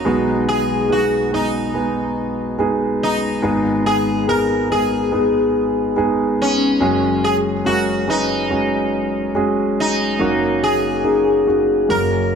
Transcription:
Already playing: sitar D#4
0.05 grand piano B1 B2 G#3 B3 D#4 F#4
0.49 sitar G#4
0.89 grand piano G#3 B3 D#4 G#4, sitar F#4
1.32 grand piano G#3 B3 D#4 G#4, sitar D#4
1.74 grand piano G#3 B3 D#4 G#4
2.59 grand piano G#3 B3 D#4 G#4
3.03 sitar D#4
3.42 grand piano G#1 G#2 G#3 B3 D#4 G#4
3.86 sitar G#4
4.28 grand piano G#3 B3 D#4 G#4, sitar A#4
4.70 grand piano G#3 B3 D#4 A#4, sitar G#4
5.12 grand piano G#3 B3 D#4 G#4
5.96 grand piano G#3 B3 D#4 G#4
6.42 sitar C#4
6.80 grand piano F#1 F#2 G#3 C#4 F#4 G#4
7.24 sitar G#4
7.65 grand piano G#3 C#4 F#4 A#4, sitar F#4
8.07 grand piano G#3 C#4 F#4 B4, sitar D#4
8.50 grand piano G#3 C#4 F#4 G#4
9.35 grand piano G#3 C#4 F#4 G#4
9.80 sitar D#4
10.19 grand piano F#1 F#2 A#3 C#4 D#4 F#4
10.64 sitar G#4
11.04 grand piano A#3 C#4 D#4 G#4
11.46 grand piano A#3 C#4 D#4 F#4
11.88 grand piano F#1 F#2 A#3 C#4 F#4 A#4, sitar A#4

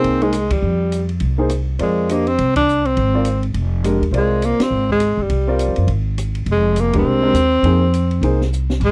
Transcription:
Already playing: grand piano A#3 D#4 G#4 C5, tenor saxophone C4
0.04 upright bass C2, ride
0.22 tenor saxophone G#3, grand piano A#3 D#4 G#4 A#4, ride
0.32 cross-stick, hi-hat pedal, ride
0.50 upright bass D#2, tenor saxophone G3, kick, ride
0.62 upright bass F2
0.92 hi-hat pedal, ride
1.09 ride
1.20 upright bass C2, ride
1.38 grand piano A#3 D#4 G#4 C5
1.50 cross-stick, hi-hat pedal, ride
1.79 upright bass F2, tenor saxophone G#3, grand piano C4 F4 A#4 D5, ride
2.09 tenor saxophone A#3, grand piano D4 G4 C5 D#5, hi-hat pedal, ride
2.27 tenor saxophone C4, ride
2.38 upright bass C2, ride
2.56 tenor saxophone D4, kick, ride
2.69 hi-hat pedal
2.85 tenor saxophone C4, ride
2.97 upright bass G#1, ride
3.14 grand piano C4 F4 A#4 D5
3.25 hi-hat pedal, ride
3.43 ride
3.54 upright bass F1, ride
3.84 grand piano G#3 D4 G4 A#4, cross-stick, hi-hat pedal, ride
4.01 upright bass D#2, ride
4.11 upright bass C2, grand piano C4 F4 A#4 D5, ride
4.17 tenor saxophone G#3
4.42 tenor saxophone A#3, hi-hat pedal, ride
4.59 muted upright bass stroke, snare, ride
4.63 tenor saxophone C4
4.70 upright bass G#1
4.89 tenor saxophone G#3, kick
5.00 cross-stick, hi-hat pedal, ride
5.17 upright bass F#1
5.22 tenor saxophone G3
5.30 upright bass C2, ride
5.47 grand piano C4 F4 A#4 D5
5.59 hi-hat pedal, ride
5.68 upright bass F2
5.76 upright bass F#2, ride
5.87 upright bass G#1, ride
6.18 cross-stick, hi-hat pedal, ride
6.35 ride
6.46 upright bass F1, ride
6.52 tenor saxophone G#3
6.76 hi-hat pedal, ride
6.80 tenor saxophone A#3
6.93 grand piano G#3 D4 G4 A#4, kick, ride
6.99 tenor saxophone C4
7.05 upright bass C2
7.22 grand piano G#3 D4 G4 A#4
7.33 upright bass D#2, cross-stick, hi-hat pedal, ride
7.63 upright bass F2, grand piano A#3 D#4 G#4 C5, ride
7.94 hi-hat pedal, ride
8.11 ride
8.21 upright bass C2, grand piano A#3 D#4 G#4 C5, ride
8.41 snare
8.53 hi-hat pedal
8.70 snare
8.80 upright bass G#1, kick, crash
8.85 tenor saxophone G#3

